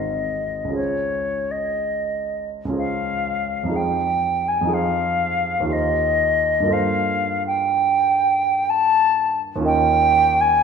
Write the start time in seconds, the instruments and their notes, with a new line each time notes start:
Already playing: grand piano G#1 C4 D#4 G#4 C5, flute D#5
0.64 grand piano C#2 C#4
0.70 grand piano F4 G#4
0.75 grand piano C5, flute C#5
1.51 flute D#5
2.65 grand piano C#2 C#4
2.70 grand piano F4 G#4
2.75 grand piano C5, flute F5
3.64 grand piano F2 D#4
3.69 grand piano F4 G#4
3.74 grand piano C5, flute G5
4.48 flute G#5
4.61 grand piano F2 D#4
4.66 grand piano F4 G#4
4.72 grand piano C5, flute F5
5.60 grand piano D#2 D#4
5.65 grand piano F4 G4
5.70 grand piano C5, flute D#5
6.60 grand piano G2 A#3
6.65 grand piano F4 A4
6.70 grand piano C5, flute F5
7.47 flute G5
8.70 flute A5
9.56 grand piano D#2 C#4
9.60 grand piano F4 A#4
9.65 grand piano D#5, flute G5
10.41 flute G#5